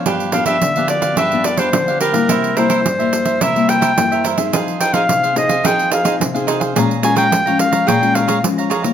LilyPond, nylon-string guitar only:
\new Staff \with { instrumentName = "Nylon-string guitar" } { \time 4/4 \key f \minor \tempo 4 = 108 << { <f b d'>8 <f b d'>8. <f b d'>4 <f b d'>8. <f b d'>8. <g bes e'>16~ | <g bes e'>8 <g bes e'>8 r16 <g bes e'>4 <g bes e'>8. <g bes e'>8 r16 <c' ees' aes'>16~ | <c' ees' aes'>8 r16 <c' ees' aes'>8. <c' ees' aes'>16 r16 <c' ees' aes'>8. <c' ees' aes'>8 <c' ees' aes'>8. | <aes des' f'>16 r16 <aes des' f'>8. <aes des' f'>4 <aes des' f'>8. <aes des' f'>8 r16 <g bes e'>16 | } \\ { g,4 d4 g,4 d4 | c4 g,4 c4 g,4 | f4 c4 f4 c4 | bes,4 f4 bes,4 f4 | } >> }